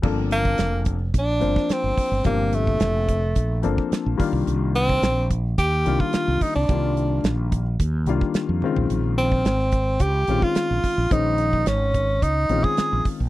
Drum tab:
CC |x---------------|----------------|----------------|----------------|
HH |--x-x-x-x-x-x-o-|x-x-x-x-x-x-x-o-|x-x-x-x-x-x-x-o-|x-x-x-x-x-x-x---|
SD |--o-o------oo---|----o-------o---|----o-------o---|----o-------o---|
T1 |----------------|----------------|----------------|--------------o-|
FT |----------------|----------------|----------------|---------------o|
BD |o--o--o-o--o--o-|o--o--o-o--o--o-|---o--o-o--o--o-|o-----o-o--o----|

CC |----------------|----------------|
HH |x-x-x-x-x-x-x-o-|x-x-x-x-x-x-x-o-|
SD |----oo------o---|----o-------o---|
T1 |----------------|----------------|
FT |----------------|----------------|
BD |---o--o-o--o--o-|o--o--o-o--o--o-|